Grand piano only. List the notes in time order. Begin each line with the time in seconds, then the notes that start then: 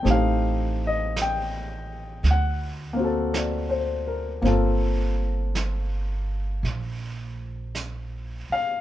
0.03 A3 C4 D#4 G4
0.11 F5
0.87 D#5
1.22 G5
2.31 F#5
2.93 A#3 C4
3.00 F#4
3.04 A4
3.33 D5
3.69 C5
4.07 A#4
4.42 A#3 C4
4.46 F4 A4
8.52 F5